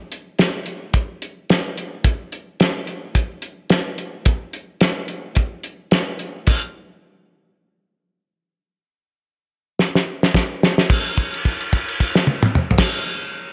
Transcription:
0.12 closed hi-hat medium
0.39 snare loud
0.39 closed hi-hat medium
0.66 closed hi-hat medium
0.94 kick medium
0.94 closed hi-hat medium
1.22 closed hi-hat medium
1.50 snare loud
1.50 closed hi-hat medium
1.78 closed hi-hat medium
2.04 kick loud
2.04 closed hi-hat medium
2.32 closed hi-hat medium
2.60 snare loud
2.60 closed hi-hat medium
2.87 closed hi-hat medium
3.15 kick medium
3.15 closed hi-hat medium
3.42 closed hi-hat medium
3.70 snare loud
3.70 closed hi-hat medium
3.98 closed hi-hat medium
4.25 kick loud
4.25 closed hi-hat medium
4.53 closed hi-hat medium
4.81 snare loud
4.81 closed hi-hat medium
5.08 closed hi-hat medium
5.35 kick medium
5.35 closed hi-hat medium
5.64 closed hi-hat medium
5.91 snare loud
5.91 closed hi-hat medium
6.19 closed hi-hat medium
6.47 kick loud
6.47 closed hi-hat medium
6.47 crash medium
9.79 snare medium
9.95 snare medium
10.23 snare medium
10.34 kick medium
10.34 snare medium
10.63 snare loud
10.78 snare medium
10.90 kick loud
10.90 crash medium
11.18 kick medium
11.18 crash soft
11.34 crash soft
11.45 kick medium
11.45 crash soft
11.60 crash soft
11.73 kick medium
11.73 crash medium
11.88 crash soft
12.00 kick medium
12.00 crash medium
12.15 snare medium
12.27 high tom medium
12.43 mid tom loud
12.55 mid tom medium
12.71 floor tom loud
12.78 kick loud
12.78 snare loud
12.78 crash loud

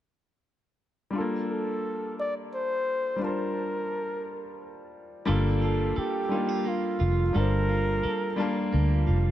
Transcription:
1.11 3.15 G3 medium
1.11 3.16 D4 medium
1.15 3.17 F4 medium
1.15 3.19 A4 medium
1.20 3.20 A#3 medium
1.50 2.14 A4 medium
2.20 2.35 D5 medium
2.55 3.25 C5 medium
3.16 5.21 G3 soft
3.16 5.23 D4 soft
3.21 5.24 F4 soft
3.21 4.60 A#4 medium
3.21 5.25 A5 soft
3.26 5.26 C5 soft
5.26 5.93 G1 medium
5.26 6.18 G3 medium
5.26 7.34 G3 medium
5.26 6.19 D4 medium
5.26 6.19 F4 medium
5.26 5.95 A4 medium
5.26 6.20 A4 medium
5.30 6.20 A#3 medium
5.62 6.31 F4 soft
5.62 6.00 A4 medium
5.96 6.69 G4 medium
5.96 7.34 A4 medium
5.96 muted fingered electric bass stroke soft
6.29 7.21 G3 medium
6.29 7.22 D4 soft
6.29 6.49 D#4 soft
6.29 7.23 F4 soft
6.29 7.23 A4 medium
6.34 7.24 A#3 medium
6.49 6.99 F4 soft
6.65 8.72 A#3 medium
6.65 7.38 F4 medium
7.00 7.32 F1 medium
7.00 7.68 F4 medium
7.33 8.00 G1 medium
7.33 8.25 G3 medium
7.33 9.31 G3 medium
7.33 8.26 D4 medium
7.33 8.27 F4 medium
7.33 8.02 A4 medium
7.33 9.08 A#4 medium
7.33 8.27 A5 medium
7.38 8.28 C5 medium
7.69 8.37 F4 medium
8.03 9.31 A4 medium
8.03 muted fingered electric bass stroke soft
8.36 9.29 G3 medium
8.36 9.29 D4 medium
8.36 9.06 F4 medium
8.36 9.30 F4 medium
8.36 9.30 A5 medium
8.41 9.31 A#3 medium
8.73 9.04 D2 medium
8.73 9.31 A#3 soft
9.07 9.31 F1 medium
9.07 9.31 F4 soft

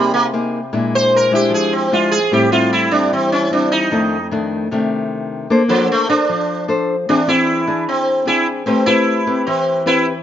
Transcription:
0.00 0.71 C3 medium
0.00 0.13 G3 medium
0.00 0.31 A#3 medium
0.00 0.30 D#4 medium
0.00 0.31 G#4 medium
0.14 0.25 A#3 medium
0.33 0.59 A#3 medium
0.33 0.59 D#4 soft
0.33 0.59 G#4 medium
0.73 1.50 A#2 medium
0.73 1.29 G#3 medium
0.73 1.29 D4 medium
0.73 1.29 E4 medium
0.95 1.13 C5 medium
1.16 1.34 A#4 medium
1.31 1.88 G#3 medium
1.31 1.88 D4 medium
1.31 1.89 E4 medium
1.31 1.53 G4 medium
1.50 2.28 F3 medium
1.54 1.72 G#4 medium
1.73 1.92 C4 soft
1.92 2.17 G#3 medium
1.92 2.18 D4 medium
1.92 2.18 E4 medium
1.92 2.12 F4 medium
2.12 2.31 G#4 medium
2.31 3.08 A2 medium
2.31 2.48 G3 medium
2.31 2.48 C4 medium
2.31 2.49 E4 medium
2.31 2.51 G4 medium
2.52 2.88 G3 medium
2.52 2.88 C4 medium
2.52 2.88 E4 medium
2.52 2.71 F4 medium
2.73 2.91 E4 medium
2.92 3.48 G3 medium
2.92 3.48 C4 medium
2.92 3.10 D4 medium
2.92 3.48 E4 medium
3.12 3.89 E3 medium
3.12 3.31 C4 medium
3.32 3.50 C#4 medium
3.51 3.89 G3 soft
3.51 3.89 C4 medium
3.51 3.71 D4 medium
3.51 3.89 E4 medium
3.72 4.26 D#4 medium
3.91 4.68 F2 medium
3.91 4.16 D#3 soft
3.91 4.16 A3 medium
3.91 4.16 D4 medium
4.31 4.67 D#3 medium
4.31 4.67 A3 medium
4.31 4.67 D4 medium
4.71 5.48 C3 medium
4.71 5.47 D#3 medium
4.71 5.47 A3 medium
4.71 5.47 D4 medium
5.50 6.27 A#3 medium
5.50 5.61 D4 medium
5.50 5.61 A4 medium
5.50 5.62 C5 medium
5.68 5.88 F3 medium
5.68 6.05 D4 medium
5.68 6.05 A4 medium
5.68 6.05 C5 medium
5.92 6.09 A3 medium
6.09 6.65 D4 medium
6.09 6.64 D4 medium
6.09 6.65 A4 medium
6.09 6.65 C5 medium
6.29 7.06 F3 medium
6.68 6.95 D4 medium
6.68 6.95 A4 medium
6.68 6.95 C5 medium
7.09 7.86 E3 medium
7.09 7.20 C4 medium
7.09 7.27 D4 medium
7.09 7.20 D4 medium
7.09 7.20 G#4 medium
7.28 7.64 C4 medium
7.28 7.64 D4 medium
7.28 7.83 E4 medium
7.28 7.65 G#4 medium
7.67 8.23 D4 medium
7.67 8.24 G#4 medium
7.89 8.24 C4 medium
8.25 8.64 C4 soft
8.25 8.65 D4 soft
8.25 8.46 E4 medium
8.25 8.65 G#4 medium
8.66 9.44 A3 medium
8.66 8.82 C4 medium
8.66 8.85 C4 medium
8.66 8.83 G4 medium
8.66 8.83 B4 medium
8.86 9.22 C4 soft
8.86 9.41 E4 medium
8.86 9.23 G4 medium
8.86 9.23 B4 medium
9.27 9.82 C4 medium
9.27 9.82 G4 soft
9.27 9.82 B4 medium
9.47 10.23 E3 medium
9.47 9.83 C4 medium
9.86 10.12 C4 medium
9.86 10.05 E4 medium
9.86 10.12 G4 medium
9.86 10.12 B4 medium

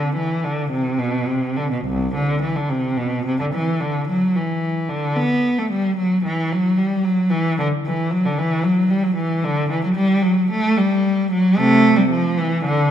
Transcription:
0.00 0.15 D3 medium
0.16 0.43 E3 medium
0.44 0.71 D3 medium
0.71 0.98 C3 medium
0.98 1.27 B2 medium
1.25 1.55 C3 medium
1.56 1.71 D3 medium
1.71 1.86 B2 soft
1.85 2.14 C2 medium
2.15 2.42 D3 medium
2.42 2.56 E3 medium
2.56 2.70 D3 medium
2.70 2.98 C3 medium
2.98 3.26 B2 medium
3.26 3.39 C3 medium
3.39 3.45 D3 medium
3.54 3.81 E3 medium
3.81 4.09 D3 medium
4.08 4.36 F#3 medium
4.36 4.90 E3 medium
4.89 5.16 D3 medium
5.16 5.57 B3 medium
5.58 5.71 A3 medium
5.72 5.98 G3 medium
5.97 6.24 F#3 medium
6.25 6.51 E3 medium
6.52 6.78 F#3 medium
6.78 7.04 G3 medium
7.04 7.31 F#3 medium
7.30 7.58 E3 medium
7.59 7.67 D3 medium
7.86 8.12 E3 medium
8.11 8.24 F#3 medium
8.25 8.38 D3 medium
8.38 8.65 E3 medium
8.63 8.90 F#3 medium
8.90 9.04 G3 medium
9.03 9.17 F#3 medium
9.16 9.42 E3 medium
9.44 9.70 D3 medium
9.70 9.83 E3 medium
9.83 9.89 F#3 medium
9.95 10.22 G3 medium
10.22 10.50 F#3 medium
10.51 10.77 A3 medium
10.78 11.32 G3 medium
11.32 11.57 F#3 medium
11.57 11.94 C3 medium
11.57 11.97 A3 medium
11.96 12.10 G3 medium
12.11 12.37 F3 medium
12.37 12.65 E3 medium
12.65 12.91 D3 medium

